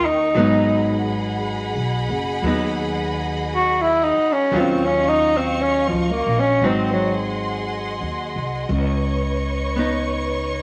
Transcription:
Already playing: D#3 A#3 C#4 G4 A#4 D#5 G5 C#6
0.00 D#2
0.05 D#4
0.35 G#1 F#3 B3 G#4 D#5 F#5 B5
0.39 D#4
1.75 B1
2.09 F#1
2.42 D#2 F#3 B3
2.47 D#4
3.55 F#4
3.82 E4
4.04 D#4
4.17 muted upright bass stroke
4.32 C#4
4.52 D#2 D#3 F#3 C#4 F5 C#6
4.56 C4 F4
4.86 C#4
5.09 D#4
5.37 C4
5.62 C#4
5.88 C#2 F3
6.11 A#3
6.27 A#1
6.40 C#4
6.61 G#1 F#3 C4 D#4 G#4 F#5 C6
6.67 C4
6.93 F#3
8.01 D#2
8.36 C2
8.69 C#2 B4 C#5 C#6
9.76 B3 D#4

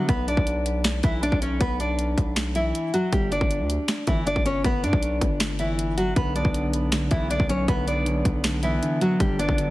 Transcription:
0.09 B1 B3 B4, kick, closed hi-hat
0.28 D4 D5, closed hi-hat
0.37 B1, kick
0.47 closed hi-hat
0.66 closed hi-hat
0.84 finger snap, snare, closed hi-hat
1.03 B1 E3 E4, kick, closed hi-hat
1.23 D4 D5, closed hi-hat
1.32 B1, kick
1.42 C#4 C#5, closed hi-hat
1.61 B1 B3 B4, kick, closed hi-hat
1.80 D4 D5, closed hi-hat
1.99 closed hi-hat
2.18 B1, kick, closed hi-hat
2.36 finger snap, snare, closed hi-hat
2.55 E3 E4, closed hi-hat
2.75 closed hi-hat
2.94 F#3 F#4, closed hi-hat
3.13 G1 G3 G4, kick, closed hi-hat
3.32 D4 D5, closed hi-hat
3.41 G1, kick
3.51 closed hi-hat
3.60 D2
3.70 closed hi-hat
3.88 finger snap, snare, closed hi-hat
4.07 G1 E3 E4, kick, closed hi-hat
4.26 D4 D5, closed hi-hat
4.36 G1, kick
4.45 C#4 C#5, closed hi-hat
4.64 G1 B3 B4, kick, closed hi-hat
4.83 G2 D4 D5, closed hi-hat
4.93 B1, kick
5.03 closed hi-hat
5.21 G1, kick, closed hi-hat
5.40 finger snap, snare, closed hi-hat
5.59 E3 E4, closed hi-hat
5.79 closed hi-hat
5.97 F#3 F#4, closed hi-hat
6.16 B1 D3 B3 B4, kick, closed hi-hat
6.35 B3 D4 D5, closed hi-hat
6.45 B1, kick
6.54 D3, closed hi-hat
6.73 closed hi-hat
6.92 D3, finger snap, snare, closed hi-hat
7.11 B1 E3 B3 E4, kick, closed hi-hat
7.30 D3 D4 D5, closed hi-hat
7.40 B1, kick
7.49 F#3 C#4 C#5, closed hi-hat
7.68 B1 D3 B3 B4, kick, closed hi-hat
7.87 B3 D4 D5, closed hi-hat
8.05 D3, closed hi-hat
8.25 B1, kick, closed hi-hat
8.44 D3, finger snap, snare, closed hi-hat
8.63 E3 B3 E4, closed hi-hat
8.82 D3, closed hi-hat
9.01 F#3 F#4, closed hi-hat
9.20 G1 D3 G3 G4, kick, closed hi-hat
9.39 B3 D4 D5, closed hi-hat
9.49 G1, kick
9.58 D3, closed hi-hat

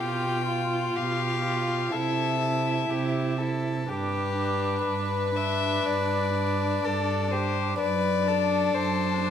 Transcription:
Already playing: G4
0.00 B2 F4 G5
0.46 F4
0.95 B2 G4 F5
1.45 F4
1.92 C3 E4 A4 E5
2.41 E4
2.90 C3 G4
3.38 E4 A4
3.88 G2 D4 G4 B4
4.39 D4
4.86 G2 B4
5.36 D4 E5
5.85 G2 D5
6.35 D4
6.84 G2 A4
7.31 D4 G4 C5
7.79 F#2 B4 D5
8.26 D4 A4
8.74 F#2 C5
9.22 D4

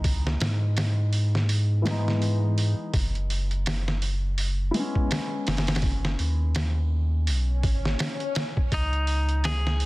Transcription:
Already playing: C#2 E3 G#3 B3 D#4
0.04 kick, open hi-hat
0.27 snare
0.40 G#2, snare, open hi-hat
0.77 snare, open hi-hat
1.13 open hi-hat
1.35 snare
1.49 open hi-hat
1.82 E3 G#3, open hi-hat
1.87 B3 D#4, snare
2.08 snare
2.22 open hi-hat
2.58 open hi-hat
2.94 F#1, kick, open hi-hat
3.15 closed hi-hat
3.30 open hi-hat
3.51 closed hi-hat
3.66 snare, open hi-hat
3.88 snare
4.02 open hi-hat
4.38 open hi-hat
4.71 G#3 E4, open hi-hat
4.77 B3 C#4
4.95 kick
5.11 snare, open hi-hat
5.47 F#1, snare, open hi-hat
5.57 snare, open hi-hat
5.67 snare, open hi-hat
5.75 snare, open hi-hat
5.82 kick, open hi-hat
6.05 snare
6.19 D#2, open hi-hat
6.55 snare, open hi-hat
7.27 B1, open hi-hat, swell
7.63 G#1, kick, open hi-hat
7.85 snare
7.99 snare, open hi-hat
8.20 closed hi-hat
8.35 snare, open hi-hat
8.57 kick
8.72 C#2 D#4, kick, open hi-hat
8.93 closed hi-hat
9.07 open hi-hat
9.29 closed hi-hat
9.44 G#4, snare, open hi-hat
9.67 snare
9.80 open hi-hat

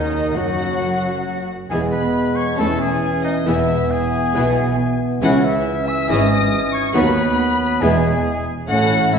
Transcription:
Already playing: D#2 D#3 D#4 D#5
0.35 F#1 F#2 F#3 F#4 F#5
1.70 E1 E2 E3 G#3 B3 G#4 G#5
1.92 B4 B5
2.35 C#5 C#6
2.56 E1 E2 E3 A3 C#4 E4 A4 A5
2.79 G#4 G#5
3.23 D#4 D#5
3.45 E1 E2 E3 B3 E4 G#4 E5
3.91 G#4 G#5
4.34 B1 B2 E3 B3 E4 G#4
5.21 C#2 E3 C#4 E4 F#4 G#4 F#5
5.44 E4 E5
5.88 E5 E6
6.07 G#1 G#2 E3 C#4 E4 G#4 D#5 D#6
6.72 C#5 C#6
6.93 D#2 D#3 F#3 B3 F#4 B4 B5
7.81 E1 E2 G#3 B3 E4 G#4 B4 G#5
8.67 A1 A2 A3 C#4 E4 F#4 A4 F#5
8.71 C#4
9.12 G#1 G#2 A3 C#4 E4 A4 E5

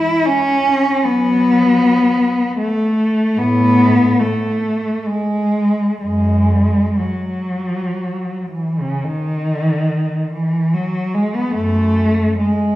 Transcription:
Already playing: E4
0.26 C#4
1.04 F#3 B3
2.59 A3
3.38 A2 B3
4.20 A3
5.07 G#3
6.03 F#2 G#3
6.99 F#3
8.50 E3
8.80 C#3
9.04 D#3
10.34 E3
10.74 F#3
11.14 G#3
11.36 B3
11.55 F#2 A3
12.39 G#3

